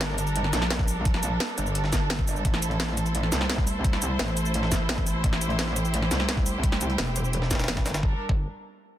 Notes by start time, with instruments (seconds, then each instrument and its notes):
Already playing: wobble bass G1, string section G3 D4 A4 A#4
0.01 snare, closed hi-hat
0.09 snare
0.18 closed hi-hat, cabasa
0.27 closed hi-hat, cabasa
0.36 closed hi-hat
0.44 snare
0.53 wobble bass A#1, snare, closed hi-hat, cabasa
0.62 snare
0.70 snare, closed hi-hat
0.79 kick, snare
0.88 closed hi-hat, open hi-hat, cabasa
1.05 kick, closed hi-hat
1.14 snare
1.23 closed hi-hat, cabasa
1.40 snare, closed hi-hat
1.49 closed hi-hat
1.58 wobble bass G1, closed hi-hat, cabasa
1.66 cabasa
1.75 closed hi-hat
1.84 snare
1.93 kick, snare, closed hi-hat, cabasa
2.10 snare, closed hi-hat
2.19 kick, closed hi-hat
2.27 closed hi-hat, open hi-hat, cabasa
2.36 cabasa
2.45 wobble bass A1, string section A3 E4 C5, kick, closed hi-hat
2.54 snare
2.62 closed hi-hat, cabasa
2.71 closed hi-hat
2.80 snare, closed hi-hat
2.88 snare
2.97 closed hi-hat, cabasa
3.06 closed hi-hat, cabasa
3.15 closed hi-hat
3.23 snare
3.32 wobble bass C2, snare, closed hi-hat, cabasa
3.41 snare
3.49 snare, closed hi-hat
3.58 kick, snare
3.67 closed hi-hat, open hi-hat, cabasa
3.84 kick, closed hi-hat
3.93 snare
4.02 closed hi-hat, cabasa
4.19 wobble bass A1, snare, closed hi-hat
4.28 closed hi-hat
4.37 closed hi-hat, cabasa
4.45 cabasa
4.54 closed hi-hat
4.63 snare
4.72 kick, snare, closed hi-hat, cabasa
4.89 snare, closed hi-hat
4.98 kick, closed hi-hat
5.06 closed hi-hat, open hi-hat, cabasa
5.24 wobble bass A1, string section G4, kick, closed hi-hat
5.33 snare
5.41 closed hi-hat, cabasa
5.50 closed hi-hat
5.59 snare, closed hi-hat
5.68 snare
5.76 closed hi-hat, cabasa
5.85 closed hi-hat, cabasa
5.94 closed hi-hat
6.02 snare
6.11 wobble bass C2, snare, closed hi-hat, cabasa
6.20 snare
6.29 snare, closed hi-hat
6.37 kick, snare
6.46 closed hi-hat, open hi-hat, cabasa
6.63 kick, closed hi-hat
6.72 snare
6.81 closed hi-hat, cabasa
6.90 closed hi-hat
6.98 wobble bass E1, snare, closed hi-hat
7.07 closed hi-hat
7.16 closed hi-hat, cabasa
7.25 cabasa
7.33 closed hi-hat
7.42 snare
7.51 kick, snare, closed hi-hat, cabasa
7.55 snare, closed hi-hat
7.59 snare, closed hi-hat, cabasa
7.64 snare, closed hi-hat
7.68 snare, closed hi-hat
7.77 kick, snare, closed hi-hat
7.86 wobble bass G1, snare, closed hi-hat, open hi-hat, cabasa
7.94 snare, closed hi-hat, cabasa
8.03 wobble bass G1, string section G3 D4 A4 A#4, kick
8.29 wobble bass G1, kick